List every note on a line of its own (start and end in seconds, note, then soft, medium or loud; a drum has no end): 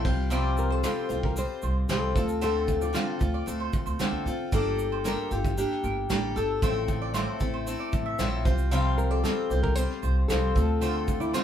0.05 0.81 C2 medium
0.05 0.30 G3 medium
0.05 0.30 C4 medium
0.05 0.31 F4 medium
0.05 0.30 C5 medium
0.05 kick loud
0.05 crash medium
0.30 0.82 C3 medium
0.30 0.83 F3 medium
0.30 0.83 G3 medium
0.30 0.84 C4 loud
0.30 0.84 F4 loud
0.30 0.84 C5 medium
0.30 0.57 D5 loud
0.30 shaker medium
0.57 0.72 A#4 loud
0.57 shaker medium
0.70 0.84 A4 medium
0.70 1.08 C5 medium
0.83 1.10 C3 medium
0.83 1.10 F3 medium
0.83 1.10 G3 medium
0.83 1.10 C4 medium
0.83 1.09 F4 medium
0.83 1.21 A4 medium
0.83 1.08 C5 medium
0.83 snare loud
0.83 shaker medium
1.09 1.43 C2 medium
1.09 1.35 G3 soft
1.09 1.36 C4 soft
1.09 1.36 F4 soft
1.09 1.36 C5 medium
1.09 shaker medium
1.23 1.36 A#4 loud
1.23 kick loud
1.36 1.88 G3 medium
1.36 1.89 C4 medium
1.36 1.89 F4 medium
1.36 1.90 C5 medium
1.36 1.87 C5 loud
1.36 shaker medium
1.62 1.84 C2 medium
1.62 1.75 C5 medium
1.62 shaker medium
1.89 2.11 C2 medium
1.89 2.15 C3 medium
1.89 2.15 F3 medium
1.89 2.16 G3 medium
1.89 2.16 C4 medium
1.89 2.15 F4 medium
1.89 2.43 A4 loud
1.89 2.15 C5 medium
1.89 snare loud
1.89 shaker medium
2.15 2.91 D2 loud
2.15 2.41 C4 soft
2.15 2.41 F4 medium
2.15 2.28 A4 medium
2.15 2.41 A4 soft
2.15 kick loud
2.15 shaker medium
2.29 shaker soft
2.41 2.92 D3 medium
2.41 2.93 A3 medium
2.41 2.92 C4 medium
2.41 2.93 F4 medium
2.41 2.94 A4 medium
2.41 2.80 A4 loud
2.41 2.54 C5 loud
2.41 shaker medium
2.68 kick medium
2.68 shaker medium
2.81 2.88 F4 medium
2.81 2.94 D5 medium
2.81 shaker medium
2.93 3.20 D3 medium
2.93 3.20 A3 medium
2.93 3.20 C4 medium
2.93 3.19 F4 medium
2.93 3.96 F4 medium
2.93 3.18 A4 medium
2.93 3.07 F5 medium
2.93 snare loud
2.93 shaker medium
3.19 3.42 D2 medium
3.19 3.46 C4 soft
3.19 3.46 F4 soft
3.19 3.46 A4 soft
3.19 kick medium
3.19 shaker medium
3.34 3.46 D5 medium
3.46 3.69 D2 medium
3.46 3.99 A3 medium
3.46 3.99 C4 medium
3.46 3.99 F4 medium
3.46 4.00 A4 medium
3.46 shaker medium
3.60 3.72 C5 medium
3.73 kick medium
3.73 shaker soft
3.86 3.97 D2 medium
3.86 3.98 C5 medium
3.86 shaker soft
3.99 4.25 D3 medium
3.99 4.26 A3 medium
3.99 4.26 C4 medium
3.99 4.26 F4 medium
3.99 4.25 A4 medium
3.99 muted upright bass stroke soft
3.99 snare loud
3.99 shaker medium
4.12 4.23 E2 medium
4.26 4.47 D3 loud
4.26 4.53 C4 soft
4.26 4.53 F4 medium
4.26 4.52 A4 medium
4.26 shaker medium
4.52 5.14 G1 loud
4.52 5.03 G3 medium
4.52 5.04 A#3 medium
4.52 5.04 D4 medium
4.52 5.05 G4 medium
4.52 5.05 A4 loud
4.52 5.02 A4 loud
4.52 4.77 D5 medium
4.52 kick loud
4.52 shaker medium
4.79 shaker medium
4.92 5.29 C5 medium
5.04 5.30 G3 medium
5.04 5.31 A#3 medium
5.04 5.31 D4 medium
5.04 5.30 G4 medium
5.04 5.30 A4 medium
5.04 5.33 A#4 loud
5.04 snare medium
5.04 shaker medium
5.31 5.63 G1 medium
5.31 5.56 D4 soft
5.31 5.58 F4 medium
5.31 5.57 G4 soft
5.31 5.57 A4 soft
5.31 shaker medium
5.44 kick medium
5.44 shaker soft
5.57 6.09 A#3 medium
5.57 6.09 D4 medium
5.57 6.09 G4 medium
5.57 6.10 G4 medium
5.57 6.10 A4 medium
5.57 shaker medium
5.71 snare soft
5.83 6.05 G1 medium
5.83 5.96 A#4 medium
5.83 shaker soft
6.10 6.31 A1 medium
6.10 6.36 G3 medium
6.10 6.36 A#3 medium
6.10 6.36 D4 medium
6.10 6.18 G4 loud
6.10 6.36 G4 medium
6.10 6.35 A4 medium
6.10 snare loud
6.10 shaker medium
6.36 6.57 G1 medium
6.36 6.63 D4 soft
6.36 6.62 G4 medium
6.36 6.62 A4 medium
6.36 6.48 A4 medium
6.36 6.85 A4 medium
6.36 shaker medium
6.62 7.24 A1 loud
6.62 7.12 A2 medium
6.62 7.14 F3 medium
6.62 7.13 A3 medium
6.62 7.15 C4 medium
6.62 7.14 E4 medium
6.62 7.14 A4 medium
6.62 6.75 C5 loud
6.62 kick loud
6.62 shaker medium
6.88 kick medium
6.88 shaker soft
7.02 7.14 D5 medium
7.14 7.40 A2 medium
7.14 7.41 F3 medium
7.14 7.41 A3 medium
7.14 7.40 C4 medium
7.14 7.40 E4 medium
7.14 7.39 A4 medium
7.14 7.27 C5 medium
7.14 snare medium
7.14 shaker medium
7.40 7.73 A1 medium
7.40 7.65 A3 soft
7.40 7.66 C4 medium
7.40 7.66 E4 medium
7.40 7.67 A4 medium
7.40 kick medium
7.40 shaker medium
7.54 7.66 C5 medium
7.66 8.19 A3 medium
7.66 8.20 C4 medium
7.66 8.19 E4 medium
7.66 8.20 A4 medium
7.66 shaker medium
7.80 7.92 D5 medium
7.93 8.14 A1 medium
7.93 kick medium
7.93 shaker soft
8.06 8.18 E5 medium
8.19 8.46 A#1 medium
8.19 8.46 A2 medium
8.19 8.46 F3 medium
8.19 8.46 A3 medium
8.19 8.46 C4 medium
8.19 8.45 E4 loud
8.19 8.45 A4 loud
8.19 snare loud
8.19 shaker medium
8.45 9.21 C2 medium
8.45 8.71 G3 soft
8.45 8.71 C4 medium
8.45 8.71 F4 medium
8.45 8.72 C5 medium
8.45 kick loud
8.45 shaker medium
8.58 shaker soft
8.71 9.22 C3 loud
8.71 9.24 F3 loud
8.71 9.23 G3 medium
8.71 9.25 C4 loud
8.71 9.24 F4 loud
8.71 9.25 C5 loud
8.71 8.97 F5 medium
8.71 shaker medium
8.98 9.11 A#4 loud
8.98 shaker soft
9.11 9.22 A4 medium
9.11 9.48 D5 medium
9.24 9.50 C3 medium
9.24 9.51 F3 medium
9.24 9.51 G3 medium
9.24 9.51 C4 medium
9.24 9.51 F4 medium
9.24 9.61 A4 loud
9.24 9.50 C5 medium
9.24 snare medium
9.24 shaker medium
9.50 9.83 C2 loud
9.50 9.76 G3 soft
9.50 9.76 C4 soft
9.50 9.77 F4 soft
9.50 9.77 C5 medium
9.50 shaker medium
9.63 9.76 A#4 loud
9.63 kick loud
9.76 10.30 G3 medium
9.76 10.31 C4 medium
9.76 10.31 F4 medium
9.76 10.28 C5 loud
9.76 10.31 C5 medium
9.76 shaker medium
9.90 snare soft
10.03 10.25 C2 loud
10.03 10.15 C5 medium
10.03 shaker soft
10.28 10.51 C2 medium
10.28 10.56 C3 medium
10.28 10.56 F3 medium
10.28 10.56 G3 medium
10.28 10.56 C4 medium
10.28 10.55 F4 medium
10.28 10.80 A4 loud
10.28 10.55 C5 medium
10.28 snare loud
10.28 shaker medium
10.55 11.31 D2 loud
10.55 10.81 C4 soft
10.55 10.81 F4 soft
10.55 10.82 A4 medium
10.55 10.68 A4 medium
10.55 kick loud
10.55 shaker medium
10.81 11.33 D3 medium
10.81 11.34 A3 medium
10.81 11.34 C4 medium
10.81 11.20 F4 medium
10.81 11.34 F4 medium
10.81 11.35 A4 medium
10.81 10.94 C5 loud
10.81 shaker medium
11.08 kick medium
11.08 shaker medium
11.20 11.34 E4 medium
11.20 11.33 D5 medium
11.20 shaker soft
11.34 11.44 D3 medium
11.34 11.44 A3 medium
11.34 11.44 C4 medium
11.34 11.44 F4 medium
11.34 11.44 A4 medium
11.34 11.44 C5 medium
11.34 snare medium
11.34 shaker medium